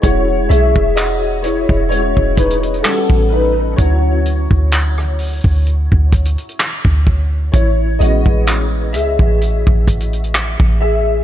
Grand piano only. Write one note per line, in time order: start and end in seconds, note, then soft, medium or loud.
0.02 1.40 G#3 medium
0.02 1.40 C#4 soft
0.02 0.47 E4 medium
0.02 0.97 F#4 medium
0.02 0.51 C#5 loud
0.49 0.94 G#4 medium
0.49 0.98 E5 loud
0.96 1.41 F#4 medium
0.96 1.45 D#5 loud
1.42 1.88 E4 medium
1.42 1.87 C#5 medium
1.89 2.34 G#3 soft
1.89 2.34 C#4 soft
1.89 2.35 E4 medium
1.89 2.34 F#4 medium
1.89 2.38 C#5 loud
2.35 2.82 D#4 medium
2.35 2.85 B4 medium
2.82 3.74 G3 medium
2.82 3.74 B3 medium
2.82 3.29 C#4 medium
2.82 3.75 F#4 medium
2.82 3.32 A4 medium
3.29 3.75 D#4 medium
3.29 3.79 B4 medium
3.76 4.42 F#3 medium
3.76 4.42 C#4 medium
3.76 4.42 E4 medium
3.76 7.03 F#4 medium
3.76 7.01 C#5 medium
7.52 7.97 E4 medium
7.52 8.01 C#5 medium
7.99 8.64 G#3 medium
7.99 8.64 B3 medium
7.99 8.64 C#4 medium
7.99 8.90 F#4 medium
7.99 8.96 D#5 medium
8.93 10.78 G#4 medium
8.93 10.79 E5 medium
10.81 10.93 G#4 medium
10.81 10.91 E5 medium